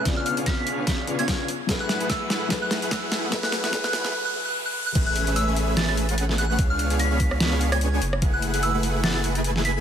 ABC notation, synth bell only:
X:1
M:4/4
L:1/16
Q:"Swing 16ths" 1/4=147
K:F#m
V:1 name="Synth bell"
z ^e' e' z b'6 z g'3 z2 | z f'2 z e'2 z3 f'2 z e'2 z2 | z f'2 z2 f'2 z2 f' z f' z f' z f' | z f'2 z e'2 z2 a' a' z4 f' f' |
z ^e' e' z b'6 z g'3 z2 | z f'2 z e'2 z2 a' a' z4 b'2 |]